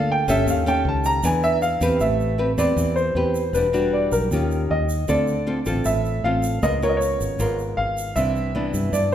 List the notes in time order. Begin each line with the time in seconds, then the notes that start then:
Already playing: D2 D3 A#3 F4 A4
0.12 G5
0.28 G1 C#4 G4 A4 E5, shaker
0.47 D#2 D#3 F5, shaker
0.66 C#4 G4 A4 G5, shaker
0.85 C#2 A5
1.05 A#5, shaker
1.23 E2 E3 D4 G#4 B4 G#5, shaker
1.43 E5, shaker
1.62 F5, shaker
1.81 E2 C4 G4 B4, shaker
2.00 A1 A3 E5, shaker
2.20 shaker
2.38 C4 G4 B4
2.58 E2 C4 G4 B4 D5, shaker
2.77 E2 E3, shaker
2.96 C5, shaker
3.15 E2 C4 G4 B4
3.35 shaker
3.53 E1 E3 G3 D4 F#4 B4, shaker
3.73 G3 D4 F#4, shaker
3.93 D5
4.12 B1 A#4, shaker
4.31 D#2 D#3 C#4 F4 G4, shaker
4.51 shaker
4.70 D#2 D#5
4.89 shaker
5.08 D2 D3 C4 F4 A4 D5, shaker
5.27 shaker
5.47 C4 F4 A4
5.66 A1 C4 F4 A4, shaker
5.85 A1 A2 E5, shaker
6.05 shaker
6.24 A1 C4 F4 A4 F5
6.43 shaker
6.63 C#2 C#3 B3 F4 A#4 D#5, shaker
6.82 B3 F4 A#4 C#5, shaker
6.89 D#5
6.97 C#5
7.02 shaker
7.20 G#1, shaker
7.39 G#1 G#2 B3 F4 A#4, shaker
7.59 shaker
7.77 G#1 F5
7.98 shaker
8.16 C2 C3 E3 B3 D4 E5, shaker
8.36 shaker
8.55 E3 B3 D4
8.74 G2, shaker
8.93 G2 D5, shaker